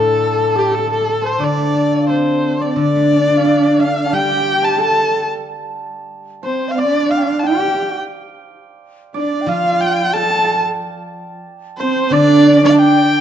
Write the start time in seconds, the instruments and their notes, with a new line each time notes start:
Already playing: guzheng A2 D3, hammered dulcimer A4 C5 D5 F5, xiao A4, erhu A4
0.38 hammered dulcimer A4
0.55 hammered dulcimer G4, xiao G4, erhu G4
0.71 hammered dulcimer A4, xiao A4, erhu A4
0.79 hammered dulcimer A4
0.87 hammered dulcimer A4, xiao A4
0.93 erhu A4, hammered dulcimer A4
1.01 hammered dulcimer A4
1.09 hammered dulcimer A4
1.22 hammered dulcimer C5, xiao C5
1.26 erhu C5
1.39 guzheng D3, hammered dulcimer D5, xiao D5
1.44 erhu D5
1.57 guzheng A3
1.75 guzheng D4
1.91 guzheng F4
2.02 xiao D5
2.08 horsehead fiddle C4, guzheng A4, hammered dulcimer C5, erhu C5, xiao C5
2.60 xiao D5, hammered dulcimer D5, erhu D5
2.76 guzheng D3, horsehead fiddle D4, hammered dulcimer D5, xiao D5, erhu D5
2.96 guzheng A3
3.12 guzheng D4
3.30 guzheng F4
3.37 hammered dulcimer F5
3.45 guzheng A4, hammered dulcimer D5
3.79 hammered dulcimer F5, xiao F5, erhu F5
4.06 xiao A5
4.13 guzheng G3, horsehead fiddle G4, hammered dulcimer G5, erhu G5, xiao G5
4.63 hammered dulcimer A5, erhu A5
4.78 horsehead fiddle A4, hammered dulcimer A5, xiao A5, erhu A5
6.43 horsehead fiddle C4, hammered dulcimer C5, xiao C5, erhu C5
6.69 xiao F5, erhu F5
6.76 horsehead fiddle D4, xiao D5, hammered dulcimer D5, erhu D5
7.10 xiao F5, hammered dulcimer F5, erhu F5
7.18 xiao G5
7.24 xiao F5
7.39 erhu A5
7.43 horsehead fiddle G4, xiao G5, hammered dulcimer G5, erhu G5
7.52 hammered dulcimer G5
7.59 hammered dulcimer G5
7.68 hammered dulcimer G5
7.74 hammered dulcimer G5
7.82 hammered dulcimer G5
9.14 horsehead fiddle D4, hammered dulcimer D5, xiao D5, erhu D5
9.41 xiao G5
9.46 guzheng F3, horsehead fiddle F4, xiao F5, hammered dulcimer F5, erhu F5
9.81 erhu G5, hammered dulcimer G5
10.13 horsehead fiddle A4, erhu A5, xiao A5, hammered dulcimer A5
10.23 hammered dulcimer A5
10.30 hammered dulcimer A5
10.39 hammered dulcimer A5
10.45 hammered dulcimer A5
10.54 hammered dulcimer A5
11.78 horsehead fiddle C4, erhu C5, hammered dulcimer C5, xiao C5
12.10 guzheng D3, horsehead fiddle D4, xiao D5, erhu D5, hammered dulcimer D5
12.63 horsehead fiddle D4, xiao D5, hammered dulcimer D5, erhu D5
12.70 xiao F5 A5
12.79 xiao G5, erhu G5